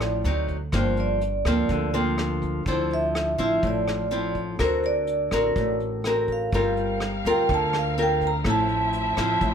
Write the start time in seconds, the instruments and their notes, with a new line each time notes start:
Already playing: upright bass A1, nylon-string guitar A2 F3 C4 E4, vibraphone D5
0.01 cross-stick, closed hi-hat
0.24 upright bass D2, nylon-string guitar F#3 C4 D#4, closed hi-hat
0.49 kick, closed hi-hat
0.72 upright bass G1, nylon-string guitar G2 F3 A#3 C4, vibraphone C5, kick, cross-stick, closed hi-hat
0.97 vibraphone D5, closed hi-hat
1.21 closed hi-hat
1.45 upright bass D2, nylon-string guitar F3 A#3 C4, kick, cross-stick, closed hi-hat
1.69 upright bass D2, nylon-string guitar D3, kick, closed hi-hat
1.94 nylon-string guitar F3 A#3 C4, closed hi-hat
2.18 cross-stick, closed hi-hat
2.42 kick, closed hi-hat
2.66 upright bass D2, nylon-string guitar D3 F3 C4 E4, vibraphone C5, kick, closed hi-hat
2.90 vibraphone E5, closed hi-hat
3.15 cross-stick, closed hi-hat
3.38 upright bass A1, nylon-string guitar F3 C4 E4, kick, closed hi-hat
3.44 vibraphone E5
3.63 upright bass A1, nylon-string guitar A2, kick, closed hi-hat
3.67 vibraphone D5
3.88 cross-stick, closed hi-hat
4.11 nylon-string guitar F3 C4 E4, closed hi-hat
4.35 kick, closed hi-hat
4.59 upright bass D2, nylon-string guitar D3 C4 F#4 A#4, kick, cross-stick, closed hi-hat
4.64 vibraphone C5
4.83 vibraphone D5, closed hi-hat
5.07 closed hi-hat
5.31 upright bass A1, nylon-string guitar C4 F#4 A#4, kick, cross-stick, closed hi-hat
5.56 upright bass A1, nylon-string guitar A2, kick, closed hi-hat
5.80 closed hi-hat
6.04 nylon-string guitar C4 F#4 A#4, cross-stick, closed hi-hat
6.28 kick, closed hi-hat
6.32 vibraphone F5
6.52 upright bass G1, nylon-string guitar G3 C4 F4 A#4, string section C4 A#4 F5, kick, closed hi-hat
6.77 closed hi-hat
7.00 cross-stick, closed hi-hat
7.25 upright bass D2, nylon-string guitar C4 F4 A#4, kick, closed hi-hat
7.30 vibraphone G5
7.49 upright bass D2, nylon-string guitar D3, kick, closed hi-hat
7.54 vibraphone A5
7.73 cross-stick, closed hi-hat
7.79 vibraphone F5
7.98 nylon-string guitar C4 F4 A#4, closed hi-hat
8.02 vibraphone G5
8.21 kick, closed hi-hat
8.27 vibraphone A#5
8.44 upright bass A1, nylon-string guitar A2 F3 C4 E4, string section E4 E5, kick, cross-stick, closed hi-hat
8.50 vibraphone A5
8.69 closed hi-hat
8.93 closed hi-hat
9.17 upright bass A1, nylon-string guitar F3 C4 E4, kick, cross-stick, closed hi-hat
9.21 vibraphone A5
9.41 upright bass A1, nylon-string guitar A2, kick, closed hi-hat